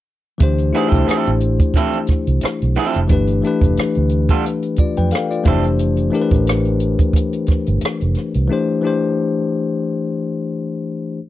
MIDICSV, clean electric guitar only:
0, 0, Header, 1, 3, 480
1, 0, Start_track
1, 0, Tempo, 674157
1, 286, Time_signature, 4, 2, 24, 8
1, 8043, End_track
2, 0, Start_track
2, 0, Title_t, "Clean electric guitar"
2, 0, Program_c, 0, 27
2, 532, Note_on_c, 0, 52, 67
2, 534, Note_on_c, 0, 59, 72
2, 539, Note_on_c, 0, 63, 77
2, 544, Note_on_c, 0, 68, 78
2, 624, Note_off_c, 0, 52, 0
2, 624, Note_on_c, 0, 53, 67
2, 627, Note_off_c, 0, 59, 0
2, 627, Note_on_c, 0, 60, 72
2, 631, Note_off_c, 0, 63, 0
2, 631, Note_on_c, 0, 64, 77
2, 637, Note_off_c, 0, 68, 0
2, 637, Note_on_c, 0, 69, 78
2, 749, Note_off_c, 0, 53, 0
2, 753, Note_off_c, 0, 60, 0
2, 755, Note_off_c, 0, 64, 0
2, 757, Note_on_c, 0, 53, 73
2, 758, Note_off_c, 0, 69, 0
2, 765, Note_on_c, 0, 60, 81
2, 768, Note_on_c, 0, 64, 77
2, 773, Note_on_c, 0, 69, 88
2, 916, Note_off_c, 0, 53, 0
2, 920, Note_off_c, 0, 60, 0
2, 922, Note_off_c, 0, 64, 0
2, 924, Note_off_c, 0, 69, 0
2, 1252, Note_on_c, 0, 53, 70
2, 1258, Note_on_c, 0, 60, 71
2, 1261, Note_on_c, 0, 64, 80
2, 1261, Note_on_c, 0, 69, 78
2, 1401, Note_off_c, 0, 53, 0
2, 1404, Note_off_c, 0, 60, 0
2, 1406, Note_off_c, 0, 64, 0
2, 1406, Note_off_c, 0, 69, 0
2, 1968, Note_on_c, 0, 53, 74
2, 1970, Note_on_c, 0, 60, 80
2, 1974, Note_on_c, 0, 64, 83
2, 1977, Note_on_c, 0, 69, 77
2, 2121, Note_off_c, 0, 53, 0
2, 2122, Note_off_c, 0, 60, 0
2, 2124, Note_off_c, 0, 64, 0
2, 2126, Note_off_c, 0, 69, 0
2, 3065, Note_on_c, 0, 69, 56
2, 3068, Note_on_c, 0, 65, 51
2, 3073, Note_on_c, 0, 59, 52
2, 3077, Note_on_c, 0, 55, 42
2, 3158, Note_off_c, 0, 69, 0
2, 3160, Note_off_c, 0, 65, 0
2, 3163, Note_off_c, 0, 59, 0
2, 3165, Note_off_c, 0, 55, 0
2, 3887, Note_on_c, 0, 53, 56
2, 3896, Note_on_c, 0, 60, 59
2, 3896, Note_on_c, 0, 64, 59
2, 3901, Note_on_c, 0, 69, 66
2, 4010, Note_off_c, 0, 53, 0
2, 4014, Note_off_c, 0, 60, 0
2, 4014, Note_off_c, 0, 64, 0
2, 4017, Note_off_c, 0, 69, 0
2, 8043, End_track
3, 0, Start_track
3, 0, Title_t, "Muted clean electric guitar strokes"
3, 1734, Note_on_c, 9, 29, 32
3, 1805, Note_off_c, 9, 29, 0
3, 8043, End_track
0, 0, End_of_file